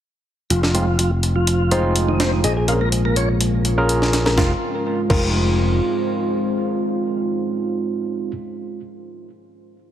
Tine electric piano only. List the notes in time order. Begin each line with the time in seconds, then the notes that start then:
0.74 G#3 C4 D#4 F4
1.71 G#3 C4 D#4 F4
2.68 C#4 F4 G#4 A#4
3.78 C#4 F4 G#4 A#4
4.38 G#3 C4 D#4 F4
5.10 G#3 C4 D#4 F4